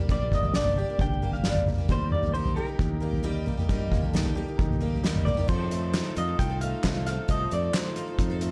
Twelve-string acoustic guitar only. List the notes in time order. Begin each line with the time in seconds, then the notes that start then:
0.09 G2 D3 G3 A#3 D4 G4
0.43 G3 A#3 D4 G4
0.54 G2 D3 G3 A#3 D4 G4
0.77 G3 A#3 D4 G4
0.88 G3 A#3 D4 G4
1.22 G3 A#3 D4 G4
1.44 G2 D3 G3 A#3 D4 G4
1.66 G3 D4 G4
1.78 G3 A#3 D4 G4
1.88 D#3 G3 A#3 D#4 G4
2.23 A#3 D#4 G4
2.34 D#3 G3 A#3 D#4 G4
2.56 G3 A#3 D#4 G4
2.66 A#3 D#4 G4
3.00 G3 A#3 D#4 G4
3.23 D#3 G3 A#3 D#4 G4
3.46 G3 A#3 D#4 G4
3.57 A#3 D#4 G4
3.69 D#3 G3 A#3 D#4 G4
4.02 A#3 D#4 G4
4.13 D#3 G3 A#3 D#4 G4
4.35 G3 A#3 D#4 G4
4.46 A#3 D#4 G4
4.80 G3 A#3 D#4 G4
5.04 D#3 G3 A#3 D#4 G4
5.26 G3 A#3 D#4 G4
5.37 A#3 D#4 G4
5.48 F3 C4 D#4 A4
5.71 F3 C4 D#4 A4
5.93 F3 C4 D#4 A4
6.15 F3 C4 D#4 A4
6.27 C4 D#4 A4
6.50 C4 D#4 A4
6.61 F3 C4 D#4 A4
6.83 F3 C4 D#4 A4
7.06 F3 C4 D#4 A4
7.28 F3 C4 D#4 A4
7.51 F3 C4 D#4 A4
7.74 F3 C4 D#4 A4
7.96 F3 C4 D#4 A4
8.08 C4 D#4 A4
8.30 C4 D#4 A4
8.41 F3 C4 D#4 A4